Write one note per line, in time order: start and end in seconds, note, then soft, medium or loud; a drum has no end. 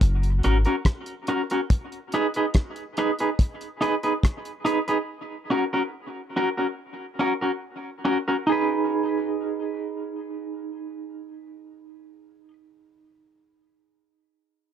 0.01 0.40 F#1 loud
0.01 kick loud
0.01 closed hi-hat loud
0.23 closed hi-hat medium
0.43 0.65 G#1 medium
0.43 0.57 C#4 medium
0.43 0.57 F#4 medium
0.43 0.57 A#4 loud
0.43 closed hi-hat medium
0.65 0.75 C#4 medium
0.65 0.75 F#4 medium
0.65 0.75 A#4 medium
0.65 closed hi-hat soft
0.85 kick loud
0.85 cross-stick loud
0.85 closed hi-hat medium
1.06 closed hi-hat medium
1.27 1.41 C#4 medium
1.27 1.41 F#4 medium
1.27 1.42 A#4 medium
1.27 closed hi-hat medium
1.50 1.60 C#4 medium
1.50 1.60 F#4 medium
1.50 1.60 A#4 medium
1.50 closed hi-hat medium
1.70 kick loud
1.70 closed hi-hat medium
1.92 closed hi-hat soft
2.12 2.26 D#4 medium
2.12 2.26 G#4 loud
2.12 2.26 B4 medium
2.12 closed hi-hat medium
2.34 2.45 D#4 medium
2.34 2.45 G#4 medium
2.34 2.45 B4 medium
2.34 closed hi-hat medium
2.54 kick loud
2.54 cross-stick medium
2.54 closed hi-hat medium
2.76 closed hi-hat soft
2.97 3.10 D#4 medium
2.97 3.10 G#4 medium
2.97 3.11 B4 medium
2.97 closed hi-hat medium
3.19 3.29 D#4 soft
3.19 3.29 G#4 medium
3.19 3.29 B4 medium
3.19 closed hi-hat soft
3.39 kick loud
3.39 closed hi-hat medium
3.61 closed hi-hat medium
3.81 3.94 D#4 medium
3.81 3.94 G#4 medium
3.81 3.95 B4 loud
3.81 closed hi-hat medium
4.03 4.13 D#4 soft
4.03 4.13 G#4 medium
4.03 4.13 B4 medium
4.03 closed hi-hat soft
4.23 kick loud
4.23 cross-stick medium
4.23 closed hi-hat medium
4.45 closed hi-hat soft
4.65 4.78 D#4 medium
4.65 4.79 G#4 medium
4.65 4.79 B4 loud
4.65 closed hi-hat medium
4.88 4.98 D#4 medium
4.88 4.98 G#4 medium
4.88 4.97 B4 medium
4.88 closed hi-hat soft
5.50 5.63 C#4 medium
5.50 5.64 F#4 medium
5.50 5.64 A#4 medium
5.73 5.82 C#4 medium
5.73 5.82 F#4 medium
5.73 5.82 A#4 medium
6.36 6.48 C#4 medium
6.36 6.49 F#4 medium
6.36 6.49 A#4 medium
6.57 6.67 C#4 soft
6.57 6.67 F#4 soft
6.57 6.66 A#4 medium
7.19 7.32 C#4 medium
7.19 7.33 F#4 loud
7.19 7.33 A#4 loud
7.41 7.51 C#4 soft
7.41 7.51 F#4 medium
7.41 7.51 A#4 medium
8.05 8.17 C#4 medium
8.05 8.17 F#4 medium
8.05 8.18 A#4 medium
8.28 8.37 C#4 soft
8.28 8.36 F#4 soft
8.28 8.36 A#4 medium
8.47 12.48 D#4 medium
8.47 12.50 G#4 medium
8.52 12.53 B4 medium